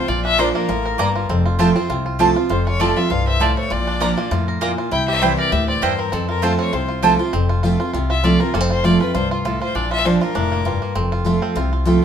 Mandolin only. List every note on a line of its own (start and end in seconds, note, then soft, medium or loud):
0.38 0.48 A#3 medium
0.38 0.48 F4 medium
0.38 0.48 D5 medium
0.38 0.48 A#5 medium
0.98 1.08 A#3 medium
0.98 1.09 F4 medium
0.98 1.09 D5 loud
0.98 1.09 A#5 loud
1.59 1.69 C4 medium
1.59 1.69 F4 medium
1.59 1.69 C5 loud
1.59 1.69 A5 loud
2.19 2.29 C4 medium
2.19 2.29 F4 medium
2.19 2.30 C5 medium
2.19 2.30 A5 loud
2.79 2.89 C4 medium
2.79 2.90 F4 medium
2.79 2.90 C5 medium
2.79 2.90 A5 medium
3.40 3.50 C4 medium
3.40 3.50 F4 medium
3.40 3.50 C5 medium
3.40 3.50 A5 loud
4.00 4.10 A#3 medium
4.00 4.11 F4 medium
4.00 4.11 D5 medium
4.00 4.11 A#5 loud
4.61 4.71 A#3 medium
4.61 4.71 F4 medium
4.61 4.71 D5 medium
4.61 4.71 A#5 medium
5.21 5.31 C4 medium
5.21 5.31 E4 medium
5.21 5.32 C5 medium
5.21 5.32 G5 loud
5.82 5.92 C4 medium
5.82 5.92 E4 loud
5.82 5.92 C5 medium
5.82 5.92 G5 loud
6.42 6.52 C4 medium
6.42 6.52 F4 medium
6.42 6.52 C5 loud
6.42 6.53 A5 loud
7.02 7.12 C4 medium
7.02 7.13 F4 medium
7.02 7.13 C5 loud
7.02 7.13 A5 loud